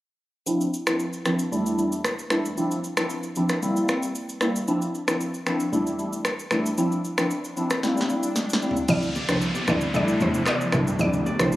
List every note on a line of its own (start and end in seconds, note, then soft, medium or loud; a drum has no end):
0.46 0.64 F3 medium
0.46 0.64 C4 medium
0.46 0.64 D4 medium
0.46 0.64 E4 medium
0.46 shaker medium
0.61 shaker medium
0.74 shaker soft
0.87 1.03 F3 medium
0.87 1.03 C4 medium
0.87 1.03 D4 medium
0.87 1.03 E4 medium
0.87 finger snap medium
0.87 cross-stick loud
0.87 shaker medium
0.99 shaker medium
1.13 shaker soft
1.25 1.43 F3 medium
1.25 1.43 C4 medium
1.25 1.43 D4 medium
1.25 1.43 E4 medium
1.25 finger snap medium
1.25 cross-stick medium
1.25 shaker medium
1.39 shaker medium
1.52 1.76 E2 medium
1.52 1.76 G3 medium
1.52 1.76 A3 medium
1.52 1.76 D4 medium
1.52 1.76 E4 medium
1.52 shaker medium
1.66 shaker medium
1.78 1.95 E2 medium
1.78 1.95 G3 medium
1.78 1.96 A3 medium
1.78 1.96 D4 medium
1.78 1.96 E4 medium
1.78 shaker medium
1.92 shaker medium
2.05 finger snap medium
2.05 cross-stick medium
2.05 shaker medium
2.19 shaker medium
2.30 2.48 E2 medium
2.30 2.48 G3 medium
2.30 2.48 A3 medium
2.30 2.48 D4 medium
2.30 2.48 E4 medium
2.30 finger snap medium
2.30 cross-stick medium
2.30 shaker soft
2.45 shaker medium
2.57 2.74 F3 medium
2.57 2.74 C4 medium
2.57 2.75 D4 medium
2.57 2.75 E4 loud
2.57 shaker medium
2.71 shaker medium
2.84 shaker soft
2.97 3.14 F3 medium
2.97 3.14 C4 medium
2.97 3.14 D4 medium
2.97 3.14 E4 medium
2.97 finger snap medium
2.97 cross-stick loud
2.97 shaker medium
3.10 shaker medium
3.23 shaker soft
3.36 3.54 F3 medium
3.36 3.54 C4 medium
3.36 3.54 D4 medium
3.36 3.54 E4 medium
3.36 shaker medium
3.49 finger snap medium
3.49 cross-stick medium
3.49 shaker medium
3.62 3.87 G3 medium
3.62 3.87 A#3 medium
3.62 3.87 C4 medium
3.62 3.87 E4 medium
3.62 shaker medium
3.76 shaker medium
3.89 4.06 G3 medium
3.89 4.06 A#3 medium
3.89 4.06 C4 medium
3.89 4.06 E4 medium
3.89 finger snap medium
3.89 cross-stick medium
3.89 shaker medium
4.03 shaker medium
4.15 shaker medium
4.29 shaker medium
4.41 4.59 G3 medium
4.41 4.59 A#3 medium
4.41 4.59 C4 medium
4.41 4.59 E4 medium
4.41 finger snap medium
4.41 cross-stick medium
4.41 shaker soft
4.56 shaker medium
4.68 4.85 F3 medium
4.68 4.85 C4 medium
4.68 4.85 D4 medium
4.68 4.85 E4 loud
4.68 shaker medium
4.82 shaker soft
4.95 shaker soft
5.07 5.24 F3 medium
5.07 5.24 C4 medium
5.07 5.24 D4 medium
5.07 5.24 E4 medium
5.07 finger snap medium
5.07 cross-stick loud
5.07 shaker medium
5.21 shaker medium
5.34 shaker soft
5.46 5.64 F3 medium
5.46 5.64 C4 medium
5.46 5.64 D4 medium
5.46 5.64 E4 medium
5.46 finger snap medium
5.46 cross-stick medium
5.46 shaker medium
5.60 shaker medium
5.72 5.97 E2 medium
5.72 5.97 G3 medium
5.72 5.97 A3 medium
5.72 5.97 D4 medium
5.72 5.97 E4 medium
5.72 shaker medium
5.87 shaker medium
5.99 6.16 E2 medium
5.99 6.16 G3 medium
5.99 6.16 A3 medium
5.99 6.16 D4 medium
5.99 6.17 E4 medium
5.99 shaker medium
6.13 shaker medium
6.25 finger snap medium
6.25 cross-stick medium
6.25 shaker medium
6.39 shaker medium
6.51 6.69 E2 medium
6.51 6.69 G3 medium
6.51 6.69 A3 medium
6.51 6.69 D4 medium
6.51 6.69 E4 medium
6.51 finger snap medium
6.51 cross-stick medium
6.51 shaker medium
6.66 shaker medium
6.78 6.95 F3 medium
6.78 6.95 C4 medium
6.78 6.95 D4 medium
6.78 6.96 E4 loud
6.78 swell medium
6.78 shaker medium
6.92 shaker medium
7.05 shaker soft
7.18 7.35 F3 medium
7.18 7.35 C4 medium
7.18 7.35 D4 medium
7.18 7.35 E4 medium
7.18 finger snap medium
7.18 cross-stick medium
7.18 shaker medium
7.31 shaker medium
7.44 shaker soft
7.57 7.74 F3 medium
7.57 7.74 C4 medium
7.57 7.74 D4 medium
7.57 7.74 E4 medium
7.57 shaker medium
7.70 finger snap medium
7.70 cross-stick medium
7.70 shaker medium
7.83 8.08 G3 medium
7.83 8.08 A#3 medium
7.83 8.08 C4 medium
7.83 8.08 E4 loud
7.83 snare medium
7.83 shaker medium
7.97 snare medium
7.97 shaker medium
8.09 8.27 G3 medium
8.09 8.27 A#3 medium
8.09 8.27 C4 medium
8.09 8.27 E4 medium
8.09 shaker medium
8.23 shaker medium
8.36 snare medium
8.36 shaker medium
8.50 snare medium
8.50 shaker medium
8.62 8.80 G3 medium
8.62 8.80 A#3 medium
8.62 8.80 C4 medium
8.62 8.80 E4 medium
8.62 shaker soft
8.71 floor tom medium
8.77 shaker medium
8.88 9.18 D2 loud
8.88 9.06 F3 medium
8.88 9.06 C4 medium
8.88 9.06 D4 medium
8.88 9.06 E4 loud
8.88 9.01 D5 loud
8.88 9.89 F5 medium
8.88 kick loud
8.88 crash loud
8.88 downlifter medium
8.88 low conga medium
8.88 shaker medium
9.03 shaker medium
9.15 9.55 D5 medium
9.15 high conga medium
9.15 shaker medium
9.29 9.48 C2 medium
9.29 9.45 F3 medium
9.29 9.45 C4 medium
9.29 9.45 D4 medium
9.29 9.46 E4 medium
9.29 9.68 C5 medium
9.29 9.41 C5 medium
9.29 finger snap medium
9.29 cross-stick loud
9.29 shaker medium
9.41 shaker medium
9.55 10.47 D5 medium
9.55 high conga medium
9.55 shaker soft
9.68 9.96 D2 loud
9.68 9.85 F3 medium
9.68 9.85 C4 medium
9.68 9.85 D4 medium
9.68 9.85 E4 medium
9.68 10.21 C5 medium
9.68 9.81 D5 medium
9.68 finger snap medium
9.68 kick medium
9.68 cross-stick medium
9.68 low conga medium
9.68 shaker medium
9.81 shaker medium
9.94 10.13 E2 loud
9.94 10.18 G3 medium
9.94 10.19 A3 medium
9.94 10.19 D4 medium
9.94 10.19 E4 loud
9.94 11.26 A4 medium
9.94 10.07 D5 medium
9.94 kick loud
9.94 low conga medium
9.94 shaker medium
10.08 shaker medium
10.20 10.40 E2 medium
10.20 10.38 G3 medium
10.20 10.38 A3 medium
10.20 10.38 D4 medium
10.20 10.38 E4 medium
10.20 11.39 C5 medium
10.20 10.33 C5 medium
10.20 high conga medium
10.20 shaker medium
10.34 shaker medium
10.46 11.26 D5 medium
10.46 10.85 D5 medium
10.46 finger snap medium
10.46 cross-stick loud
10.46 clap loud
10.46 high conga medium
10.46 shaker medium
10.61 shaker medium
10.72 10.92 C2 medium
10.72 10.90 G3 medium
10.72 10.90 A3 medium
10.72 10.90 D4 medium
10.72 10.90 E4 medium
10.72 finger snap medium
10.72 kick loud
10.72 cross-stick loud
10.72 mid tom loud
10.72 high conga medium
10.72 low conga medium
10.72 shaker medium
10.87 shaker medium
10.99 11.29 D2 loud
10.99 11.16 F3 loud
10.99 11.17 C4 medium
10.99 11.17 D4 medium
10.99 11.56 E4 medium
10.99 11.17 E4 loud
10.99 11.12 D5 loud
10.99 kick loud
10.99 low conga medium
10.99 shaker medium
11.13 shaker medium
11.26 11.56 D5 medium
11.26 high conga medium
11.26 shaker soft
11.39 11.56 C2 medium
11.39 11.56 F3 medium
11.39 11.56 C4 medium
11.39 11.56 D4 medium
11.39 11.56 E4 medium
11.39 11.56 C5 medium
11.39 11.51 C5 medium
11.39 finger snap medium
11.39 cross-stick loud
11.39 shaker loud
11.52 shaker medium